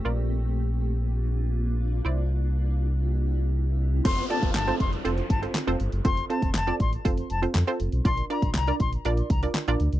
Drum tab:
CC |----------------|----------------|x---------------|----------------|
HH |----------------|----------------|xxxxxxxxxxxxxxxx|xxxxxxxxxxxxxxxx|
CP |----------------|----------------|----x-------x---|----x-------x---|
SD |----------------|----------------|----o-------o---|----o-------o---|
BD |----------------|----------------|o--o--o---o-----|o--o--o-o-------|

CC |----------------|
HH |xxxxxxxxxxxxxxxx|
CP |----x-------x---|
SD |----o-------o---|
BD |o--o--o---o-----|